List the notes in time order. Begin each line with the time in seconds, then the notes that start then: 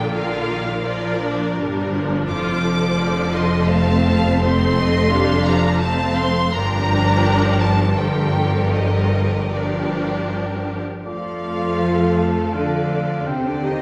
Already playing: A#1 A#2 D3 D4 A#4 D5 G5
0.12 D3 F4 A#4 D5 F5
0.47 D#3
0.84 F3 F4 A#4 D5
1.21 D4
1.56 G1 G2 G3 D4 A#4
1.93 F3
2.27 F1 F2 F3 F4 A4 C5 D6
2.65 D3
3.00 D5
3.34 D#5 C6
3.70 A3 C4 C5 F5 A5
4.05 F5
4.41 A3 C4 A4 C5 C6
4.78 D#5
5.12 G3 D4 F5
5.45 F3 A#5
5.80 A3 C4 C5 F5 A5
6.16 C6
6.54 G1 G2 F3 D4 G4 A#4 A#5
7.61 A5
7.98 D3 F3 G4 A#4 G5
8.73 D#5
9.51 F3 D4 G4 A#4 D5
11.05 F2 F3 A3 F4 A4 C5 D5 F5
11.80 C5
12.18 A5
12.53 D3 D4 D5 F5
13.27 D#2 C3 C4 G4 C5 G5
13.46 D3 D4 D5
13.64 D#3 D#4 D#5